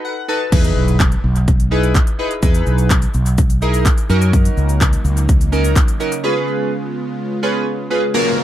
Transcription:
Already playing: synth keys D#4 F#4 A4 B4
0.05 synth keys F#5
0.28 synth keys D#4 F#4 A4 B4 A5
0.52 fretless electric bass E2, synth keys D#4 E4 G#4 B4, kick, closed hi-hat, crash, impact
0.64 closed hi-hat
0.76 fretless electric bass B1
0.88 closed hi-hat
1.00 kick, clap, closed hi-hat
1.12 closed hi-hat
1.24 fretless electric bass B1
1.36 closed hi-hat
1.48 kick, closed hi-hat
1.60 closed hi-hat
1.71 synth keys D#4 E4 G#4 B4
1.83 closed hi-hat
1.95 kick, clap, closed hi-hat
2.07 closed hi-hat
2.19 synth keys D#4 E4 G#4 B4
2.31 closed hi-hat
2.42 fretless electric bass E2, synth keys D#4 E4 G#4 B4, kick, closed hi-hat, shaker
2.54 closed hi-hat, shaker
2.67 fretless electric bass B1, shaker
2.78 closed hi-hat, shaker
2.90 kick, clap, closed hi-hat, shaker
3.02 closed hi-hat, shaker
3.14 fretless electric bass B1, shaker
3.26 closed hi-hat, shaker
3.38 kick, closed hi-hat, shaker
3.50 closed hi-hat, shaker
3.62 synth keys D#4 E4 G#4 A#4, shaker
3.74 closed hi-hat, shaker
3.86 kick, clap, closed hi-hat, shaker
3.98 closed hi-hat, shaker
4.09 fretless electric bass F#2, synth keys C#4 D#4 F#4 A#4, shaker
4.22 closed hi-hat, shaker
4.33 supersaw synth C#3 F#3 A#3 D#4, kick, closed hi-hat, shaker
4.45 closed hi-hat, shaker
4.57 fretless electric bass C#2, shaker
4.69 closed hi-hat, shaker
4.81 kick, clap, closed hi-hat, shaker
4.93 closed hi-hat, shaker
5.05 fretless electric bass C#2, shaker
5.17 closed hi-hat, shaker
5.29 kick, closed hi-hat, shaker
5.41 closed hi-hat, shaker
5.52 synth keys C#4 D#4 F#4 A#4, shaker
5.65 closed hi-hat, shaker
5.76 kick, clap, closed hi-hat, shaker
5.88 closed hi-hat, shaker
6.00 synth keys C#4 D#4 F#4 A#4, shaker
6.12 closed hi-hat, shaker
6.24 supersaw synth G#3 B3 F4, synth keys C#4 F4 G#4 B4
7.43 synth keys C#4 F4 G#4 B4
7.90 synth keys C#4 F4 G#4 B4
8.14 supersaw synth C#3 F#3 A#3 F5, synth keys A#3 C#4 F4 F#4 A#4, downlifter

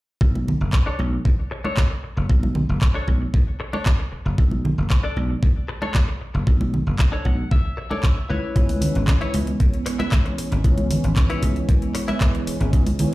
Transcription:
0.21 slap bass B1, kick
0.35 high conga
0.48 low conga
0.61 slap bass F#1
0.73 kick, clap
0.86 clean electric guitar D4 A4 C#5
0.99 slap bass B1, high conga
1.12 muted clean electric guitar stroke
1.25 slap bass E2, kick
1.51 muted clean electric guitar stroke
1.64 clean electric guitar D4 A4 C#5, high conga
1.77 kick, clap
1.90 muted clean electric guitar stroke
2.03 muted clean electric guitar stroke
2.17 slap bass F#1, muted clean electric guitar stroke
2.30 slap bass B1, kick
2.43 high conga
2.55 low conga
2.69 slap bass F#1
2.81 kick, clap
2.94 clean electric guitar D4 A4 C#5
3.07 slap bass B1, kick, high conga
3.21 muted clean electric guitar stroke
3.34 slap bass E2, kick
3.60 muted clean electric guitar stroke
3.73 clean electric guitar D4 A4 C#5, high conga
3.86 kick, clap
3.99 muted clean electric guitar stroke
4.12 muted clean electric guitar stroke, muted slap bass stroke
4.25 slap bass F#1, muted clean electric guitar stroke
4.38 slap bass B1, kick
4.51 high conga
4.65 low conga
4.78 slap bass F#1
4.90 kick, clap
5.03 clean electric guitar D4 A4 D5
5.17 slap bass B1, high conga
5.30 muted clean electric guitar stroke
5.43 slap bass E2, kick
5.68 muted clean electric guitar stroke
5.82 clean electric guitar D4 A4 C#5, high conga
5.94 kick, clap
6.08 muted clean electric guitar stroke
6.21 muted clean electric guitar stroke
6.34 slap bass F#1, muted clean electric guitar stroke
6.47 slap bass B1, kick
6.61 high conga
6.74 low conga
6.87 slap bass F#1
6.99 kick, clap
7.12 clean electric guitar D4 A4 C#5
7.25 slap bass B1, clean electric guitar F#5, kick, high conga
7.38 muted clean electric guitar stroke
7.51 slap bass E2, clean electric guitar E5, kick
7.77 muted clean electric guitar stroke
7.90 clean electric guitar D4 A4 C#5 D5, high conga
8.03 clean electric guitar E5, kick, clap
8.17 muted clean electric guitar stroke
8.29 slap bass C#2, clean electric guitar E4 B4 C#5
8.55 slap bass C#2, analog polysynth E3 G#3 B3 C#4, kick, closed hi-hat
8.69 open hi-hat, high conga
8.81 analog polysynth E3 G#3 B3 C#4, open hi-hat, low conga
8.95 slap bass G#1, closed hi-hat
9.07 kick, clap, closed hi-hat
9.21 clean electric guitar E4 B4 C#5, closed hi-hat
9.34 slap bass C#2, open hi-hat, high conga
9.47 muted clean electric guitar stroke, closed hi-hat
9.60 slap bass F#2, kick, closed hi-hat
9.74 closed hi-hat
9.85 analog polysynth E3 G#3 B3 C#4, muted clean electric guitar stroke, open hi-hat
9.99 clean electric guitar E4 B4 E5, closed hi-hat, high conga
10.12 kick, clap, closed hi-hat
10.25 muted clean electric guitar stroke, closed hi-hat
10.38 muted clean electric guitar stroke, open hi-hat
10.52 slap bass G#1, muted clean electric guitar stroke, closed hi-hat
10.64 slap bass C#2, analog polysynth E3 G#3 B3 C#4, kick, closed hi-hat
10.78 closed hi-hat, high conga
10.89 analog polysynth E3 G#3 B3 C#4, open hi-hat, low conga
11.04 slap bass G#1, closed hi-hat
11.16 kick, clap, closed hi-hat
11.30 clean electric guitar E4 B4 C#5, closed hi-hat
11.42 slap bass C#2, kick, open hi-hat, high conga
11.56 muted clean electric guitar stroke, closed hi-hat
11.69 slap bass F#2, kick, closed hi-hat
11.82 closed hi-hat
11.95 muted clean electric guitar stroke, open hi-hat
12.08 clean electric guitar E4 B4 E5, closed hi-hat, high conga
12.21 kick, clap, closed hi-hat
12.34 muted clean electric guitar stroke, closed hi-hat
12.47 muted clean electric guitar stroke, muted slap bass stroke, open hi-hat
12.60 slap bass G#1, analog polysynth E3 G#3 B3 C#4, muted clean electric guitar stroke, closed hi-hat
12.73 slap bass C#2, analog polysynth E3 G#3 B3 C#4, kick, closed hi-hat
12.86 open hi-hat, high conga
12.98 analog polysynth E3 G#3 B3 C#4, open hi-hat, low conga

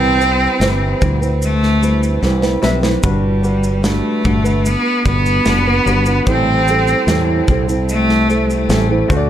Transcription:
Already playing: fretless electric bass C2, steel-string acoustic guitar C3 E3 G3 C4 E4 B4, cello C4, upright piano C4 B4 E5
0.21 steel-string acoustic guitar G3 C4 E4 B4, shaker
0.60 fretless electric bass G1, steel-string acoustic guitar C3 E3 G3 C4 E4 B4, snare, shaker
1.01 fretless electric bass D2, steel-string acoustic guitar G3 C4 E4 B4, kick, shaker
1.21 steel-string acoustic guitar G3 C4 E4 B4, shaker
1.42 cello A3, shaker
1.63 snare
1.81 steel-string acoustic guitar G3 C4 E4 B4, shaker
2.03 shaker
2.22 fretless electric bass C2, steel-string acoustic guitar C3 E3 G3 C4 E4 B4, snare
2.42 steel-string acoustic guitar G3 C4 E4 B4, snare
2.62 fretless electric bass B1, steel-string acoustic guitar G3 C4 E4 B4, upright piano C4 B4 E5, snare
2.82 steel-string acoustic guitar G3 C4 E4 B4, snare
3.03 fretless electric bass G1, steel-string acoustic guitar G3 D4 F#4 B4, upright piano G3 F#4 B4, cello G3, kick, shaker
3.43 steel-string acoustic guitar G3 D4 F#4 B4, shaker
3.64 shaker
3.83 steel-string acoustic guitar G3 D4 F#4 B4, cello A3, snare, shaker
4.24 fretless electric bass G1, steel-string acoustic guitar G3 D4 F#4 B4, kick, shaker
4.44 steel-string acoustic guitar D4 F#4 B4, shaker
4.66 cello B3, shaker
5.05 fretless electric bass G1, steel-string acoustic guitar G3 D4 F#4 B4, cello B3, kick, shaker
5.26 shaker
5.46 fretless electric bass F#1, steel-string acoustic guitar G3 D4 F#4 B4, snare, shaker
5.67 steel-string acoustic guitar D4 F#4 B4
5.85 fretless electric bass G1, upright piano G3 F#4 B4, steel-string acoustic guitar G3 D4 F#4, shaker
5.89 steel-string acoustic guitar B4
6.06 steel-string acoustic guitar D4 F#4 B4, shaker
6.25 fretless electric bass A1, steel-string acoustic guitar A2 E3 G3 C4 E4 A4, upright piano A3 G4 C5, cello C4, kick, shaker
6.68 steel-string acoustic guitar G3 C4 E4 A4, shaker
6.88 shaker
7.07 fretless electric bass E2, steel-string acoustic guitar A2 E3 G3 C4 E4 A4, snare, shaker
7.48 fretless electric bass C2, steel-string acoustic guitar G3 C4 E4 A4, kick, shaker
7.69 steel-string acoustic guitar G3 C4 E4 A4, shaker
7.89 cello A3, shaker
8.09 snare
8.28 steel-string acoustic guitar G3 C4 E4 A4, shaker
8.50 shaker
8.69 fretless electric bass A1, steel-string acoustic guitar A2 E3 G3 C4 E4 A4, snare, shaker
8.89 steel-string acoustic guitar G3 C4 E4 A4
9.08 fretless electric bass D2, upright piano A3 F#4 C5, steel-string acoustic guitar A3 D4 F#4 A4, kick, shaker
9.17 upright piano D5

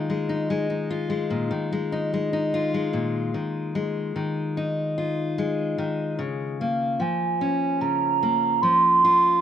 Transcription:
Already playing: steel-string acoustic guitar D#3 D#4 F4
0.10 steel-string acoustic guitar G#3
0.29 steel-string acoustic guitar D#4
0.50 steel-string acoustic guitar G#3
0.70 steel-string acoustic guitar D#4
0.90 steel-string acoustic guitar F4
1.10 steel-string acoustic guitar G#3
1.30 steel-string acoustic guitar A#2
1.51 steel-string acoustic guitar D#3
1.73 steel-string acoustic guitar G#3
1.92 steel-string acoustic guitar D#4
2.14 steel-string acoustic guitar G#3
2.33 steel-string acoustic guitar D#4
2.54 steel-string acoustic guitar F4
2.74 steel-string acoustic guitar G#3
2.93 steel-string acoustic guitar A#2
3.34 steel-string acoustic guitar D#3
3.75 steel-string acoustic guitar G#3
4.16 steel-string acoustic guitar D#3
4.57 steel-string acoustic guitar D#4
4.98 steel-string acoustic guitar F4
5.38 steel-string acoustic guitar G#3
5.78 steel-string acoustic guitar D#3
6.19 steel-string acoustic guitar C#3
6.60 steel-string acoustic guitar A#3, flute F5
7.00 steel-string acoustic guitar F3, flute G#5
7.41 steel-string acoustic guitar C#4
7.81 steel-string acoustic guitar C#3, flute A#5
8.23 steel-string acoustic guitar A#3
8.62 steel-string acoustic guitar F3, flute C6
9.05 steel-string acoustic guitar F4

